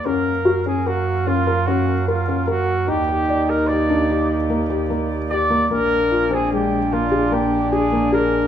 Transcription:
0.04 2.90 F#2 medium
0.04 2.85 F#3 medium
0.04 2.90 A#3 medium
0.04 0.31 C#4 medium
0.04 0.66 A#4 medium
0.04 2.86 A#4 medium
0.04 2.86 F5 medium
0.45 0.58 F#4 medium
0.66 0.79 C#4 medium
0.66 0.89 G#4 medium
0.86 1.28 F#4 medium
0.86 1.12 A#4 medium
1.27 1.40 C#4 medium
1.27 1.68 F4 medium
1.47 1.60 A#4 medium
1.66 1.93 C#4 medium
1.66 2.07 F#4 medium
2.08 2.45 F4 medium
2.08 2.21 A#4 medium
2.28 2.41 C#4 medium
2.48 2.90 F#4 medium
2.48 2.73 A#4 medium
2.88 5.72 D#2 medium
2.88 5.68 D#3 medium
2.88 3.01 D#4 medium
2.88 5.44 D#4 loud
2.88 5.68 G4 medium
2.88 3.51 G4 medium
2.88 8.47 D5 medium
3.08 3.21 G4 medium
3.29 3.55 D5 medium
3.49 3.69 A#4 medium
3.67 3.82 G4 medium
3.67 4.49 D5 medium
3.89 4.02 D4 medium
4.10 4.35 G4 medium
4.50 4.63 A#3 medium
4.70 4.83 G4 medium
4.90 5.16 A#3 medium
5.30 5.43 G4 medium
5.30 5.68 D5 medium
5.50 5.63 A#3 medium
5.71 8.47 A#1 medium
5.71 8.47 G#3 medium
5.71 5.96 A#3 medium
5.71 8.47 A#3 medium
5.71 8.47 D4 loud
5.71 6.36 A#4 loud
6.11 6.24 F4 medium
6.31 6.44 C4 medium
6.31 6.52 G#4 medium
6.52 6.78 G#3 medium
6.52 6.94 G4 medium
6.93 7.05 A#3 medium
6.93 7.35 F4 medium
7.12 7.25 G#4 medium
7.32 7.58 A#3 medium
7.32 7.74 G4 medium
7.72 8.12 G#4 medium
7.72 7.85 G#4 medium
7.92 8.05 A#3 medium
8.12 8.38 G#4 medium
8.12 8.47 A#4 medium

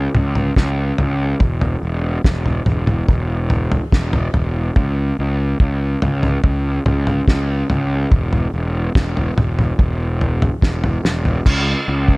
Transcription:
0.15 0.50 C#2 medium
0.15 floor tom medium
0.15 mid tom medium
0.35 floor tom medium
0.56 0.91 C#2 medium
0.56 kick loud
0.56 snare medium
0.98 1.34 C#2 medium
0.98 floor tom medium
1.40 1.75 E1 medium
1.40 kick loud
1.40 floor tom medium
1.61 floor tom medium
1.83 2.17 E1 medium
2.24 2.59 E1 medium
2.24 kick loud
2.24 snare medium
2.46 floor tom medium
2.66 3.02 E1 medium
2.66 floor tom medium
2.66 mid tom medium
2.87 floor tom medium
2.87 mid tom medium
3.08 3.78 E1 medium
3.08 kick medium
3.08 floor tom medium
3.50 floor tom medium
3.72 floor tom medium
3.92 4.27 E1 medium
3.92 kick medium
3.92 snare medium
4.13 floor tom medium
4.34 4.69 E1 medium
4.34 floor tom medium
4.76 5.11 C#2 medium
4.76 kick medium
4.76 floor tom medium
5.19 5.53 C#2 medium
5.60 5.95 C#2 medium
5.60 kick loud
6.02 6.37 C#2 medium
6.02 floor tom medium
6.23 floor tom medium
6.43 6.78 C#2 medium
6.43 kick loud
6.43 floor tom medium
6.86 7.20 C#2 medium
6.86 floor tom medium
6.86 mid tom medium
7.07 floor tom medium
7.28 7.62 C#2 medium
7.28 kick loud
7.28 snare medium
7.70 8.05 C#2 medium
7.70 floor tom medium
8.12 8.46 E1 medium
8.12 kick loud
8.12 floor tom medium
8.33 floor tom medium
8.54 8.88 E1 medium
8.95 9.30 E1 medium
8.95 kick loud
8.95 snare medium
9.17 floor tom medium
9.38 9.72 E1 medium
9.38 floor tom medium
9.38 mid tom medium
9.59 floor tom medium
9.59 mid tom medium
9.79 10.48 E1 medium
9.79 kick medium
9.79 floor tom medium
10.21 floor tom medium
10.42 floor tom medium
10.62 10.97 E1 medium
10.62 kick medium
10.62 snare medium
10.84 floor tom medium
11.05 11.39 E1 medium
11.05 snare medium
11.25 floor tom medium
11.46 11.73 C#2 medium
11.46 kick loud
11.46 crash loud
11.88 12.15 C#2 medium
12.08 kick medium

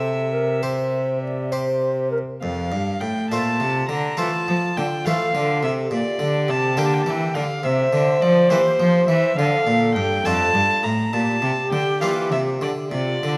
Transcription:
0.00 2.18 C3 medium
0.00 2.18 C3 soft
0.00 0.38 G4 soft
0.00 0.35 A4 medium
0.00 0.38 C5 soft
0.00 1.52 E5 medium
0.33 0.63 A#4 medium
0.62 1.27 G4 soft
0.62 1.21 C5 medium
0.62 1.27 C5 soft
1.22 1.53 D5 medium
1.52 2.17 G4 soft
1.52 2.11 C5 medium
1.52 2.17 C5 soft
2.11 2.18 A#4 medium
2.41 2.73 F2 medium
2.41 2.69 F2 soft
2.41 3.02 F5 medium
2.72 2.98 G2 medium
2.72 3.01 G2 medium
3.00 3.28 A2 soft
3.00 3.33 A2 medium
3.00 3.29 G5 medium
3.30 3.62 A#2 medium
3.30 3.58 A#2 soft
3.30 3.74 A3 soft
3.30 3.95 F4 soft
3.30 3.95 C5 soft
3.30 3.88 A5 medium
3.60 3.86 C3 medium
3.60 3.89 C3 medium
3.89 4.15 D3 soft
3.89 4.18 D3 medium
3.89 4.19 A#5 medium
4.17 4.44 E3 soft
4.17 4.27 E3 medium
4.17 4.60 A3 soft
4.17 4.81 F4 soft
4.17 5.08 F4 medium
4.17 4.81 C5 soft
4.17 4.78 A5 medium
4.48 4.74 F3 medium
4.48 4.57 F3 medium
4.77 5.03 D3 soft
4.77 4.86 D3 medium
4.77 5.06 G5 medium
5.05 5.14 E3 medium
5.05 5.32 E3 medium
5.05 5.27 A3 soft
5.05 5.68 F4 soft
5.05 5.93 A4 medium
5.05 5.68 C5 soft
5.05 5.63 F5 loud
5.34 5.65 D3 medium
5.34 5.60 D3 medium
5.63 5.89 C3 medium
5.63 5.91 C3 medium
5.63 5.71 E5 medium
5.91 6.17 A#2 medium
5.91 6.00 A#2 medium
5.91 7.63 G4 medium
5.91 6.51 D5 medium
6.19 6.46 D3 medium
6.19 6.51 D3 medium
6.48 6.75 C3 medium
6.48 6.79 C3 medium
6.48 6.80 A5 medium
6.77 7.03 D3 medium
6.77 7.06 D3 medium
6.77 7.39 A#3 soft
6.77 7.39 G4 soft
6.77 7.40 A#4 soft
6.77 6.87 G5 medium
6.85 6.95 A5 medium
6.93 7.03 G5 medium
7.02 7.11 A5 medium
7.06 7.32 E3 medium
7.06 7.35 E3 medium
7.06 7.36 G5 medium
7.34 7.61 D3 medium
7.34 7.43 D3 medium
7.34 7.66 F5 medium
7.63 7.89 C3 medium
7.63 7.92 C3 medium
7.63 9.34 C5 loud
7.63 8.23 E5 medium
7.93 8.18 D3 medium
7.93 8.21 D3 medium
8.21 8.50 F3 medium
8.21 8.48 F3 medium
8.21 8.51 D5 medium
8.49 8.76 E3 medium
8.49 8.60 E3 medium
8.49 9.13 A#3 medium
8.49 9.14 G4 medium
8.49 9.07 C5 medium
8.80 9.06 F3 medium
8.80 9.08 F3 medium
9.08 9.34 E3 medium
9.08 9.37 E3 medium
9.08 9.38 E5 medium
9.37 9.66 D3 medium
9.37 9.64 D3 medium
9.37 10.81 A4 loud
9.37 9.94 F5 loud
9.67 9.93 A#2 medium
9.67 9.97 A#2 medium
9.95 10.24 G2 medium
9.95 10.22 G2 medium
9.95 10.27 G5 loud
10.25 10.53 F2 medium
10.25 10.52 F2 medium
10.25 10.46 A3 soft
10.25 10.89 D4 soft
10.25 10.89 F4 soft
10.25 10.85 A5 loud
10.54 10.62 G2 medium
10.54 10.81 G2 medium
10.83 11.12 A2 medium
10.83 11.10 A2 medium
10.83 11.14 A#5 medium
11.12 11.41 A#2 medium
11.12 11.39 A#2 medium
11.12 12.88 G4 medium
11.12 11.71 A5 medium
11.42 11.50 C3 medium
11.42 11.69 C3 medium
11.71 11.79 D3 medium
11.71 11.99 D3 medium
11.71 12.00 G5 medium
12.01 12.29 E3 medium
12.01 12.33 E3 medium
12.01 12.67 A#3 soft
12.01 12.67 D4 soft
12.01 12.67 F4 medium
12.01 12.09 F5 medium
12.32 12.61 C3 medium
12.32 12.59 C3 medium
12.32 12.40 E5 medium
12.61 12.89 D3 medium
12.61 12.70 D3 medium
12.61 12.70 D5 medium
12.91 13.19 C3 medium
12.91 13.22 C3 medium
12.91 13.38 F4 medium
12.91 13.38 D5 medium
13.22 13.38 D3 medium
13.22 13.38 D3 soft

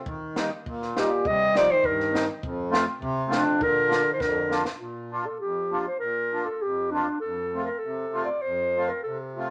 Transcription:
0.06 0.51 D#3 medium
0.06 kick medium
0.35 0.49 G3 medium
0.35 0.49 A#3 medium
0.35 0.50 D#4 medium
0.35 snare medium
0.66 1.10 A#2 medium
0.66 kick medium
0.82 snare soft
0.95 1.09 G3 medium
0.95 1.09 A#3 medium
0.95 1.09 D#4 medium
0.95 1.28 G4 medium
0.95 snare medium
1.00 1.30 A#2 medium
1.25 1.69 C3 medium
1.25 1.60 G3 medium
1.25 1.58 D#5 loud
1.25 kick medium
1.54 1.74 F3 medium
1.54 1.68 G3 medium
1.54 1.68 C4 medium
1.54 1.68 D#4 medium
1.54 1.73 D5 medium
1.54 snare medium
1.71 1.87 D#3 medium
1.71 1.87 C5 medium
1.84 2.28 G2 medium
1.84 2.29 D#3 medium
1.84 2.29 A#4 medium
1.84 kick medium
2.00 snare soft
2.11 2.25 G3 medium
2.11 2.26 C4 medium
2.11 2.26 D#4 medium
2.15 snare medium
2.42 2.86 F2 medium
2.42 kick medium
2.70 2.85 A3 medium
2.70 2.85 C4 medium
2.70 2.85 F4 medium
2.70 snare medium
3.00 3.44 C3 medium
3.00 kick medium
3.28 3.43 A3 medium
3.28 3.43 C4 medium
3.28 3.43 F4 medium
3.32 3.64 F2 medium
3.32 3.64 D4 medium
3.32 snare medium
3.59 4.04 A#2 medium
3.59 4.13 D3 medium
3.59 4.13 A#4 loud
3.59 kick medium
3.87 4.02 A#3 medium
3.87 4.02 D4 medium
3.87 4.02 F4 medium
3.92 snare medium
4.13 4.23 D#3 soft
4.13 4.22 C5 medium
4.19 4.64 F2 medium
4.19 4.66 D3 medium
4.19 4.65 A#4 medium
4.19 kick medium
4.19 snare soft
4.49 4.63 A#3 medium
4.49 4.63 D4 soft
4.49 4.63 F4 medium
4.49 snare medium
4.65 snare medium
4.80 5.25 A#2 soft
4.80 5.27 F4 medium
5.12 5.25 A#3 soft
5.12 5.25 D4 soft
5.12 5.25 F4 soft
5.25 5.40 A4 medium
5.40 5.87 F2 medium
5.40 5.83 G4 medium
5.71 5.85 A#3 soft
5.71 5.85 D4 soft
5.71 5.86 F4 soft
5.87 5.99 C5 medium
5.99 6.47 A#2 medium
5.99 6.47 A#4 medium
6.33 6.46 A#3 soft
6.33 6.47 D4 soft
6.33 6.47 F4 soft
6.45 6.63 A4 medium
6.62 7.08 F2 medium
6.62 6.92 G4 medium
6.91 7.06 A#3 medium
6.91 7.20 D4 medium
6.91 7.07 D4 soft
6.91 7.07 F4 medium
7.20 7.69 F2 medium
7.20 7.64 A4 medium
7.54 7.68 A3 soft
7.54 7.68 C4 soft
7.54 7.68 F4 soft
7.64 7.80 A#4 medium
7.78 8.24 A4 medium
7.84 8.30 C3 medium
8.13 8.28 A3 medium
8.13 8.28 C4 soft
8.13 8.28 F4 medium
8.25 8.43 D5 medium
8.42 8.91 F2 medium
8.42 8.90 C5 medium
8.76 8.90 A3 medium
8.76 8.90 C4 soft
8.76 8.91 F4 medium
8.89 9.03 A#4 medium
9.03 9.50 C3 medium
9.03 9.18 A4 medium
9.34 9.50 A3 soft
9.34 9.50 C4 soft
9.34 9.50 F4 medium
9.39 9.50 F4 soft

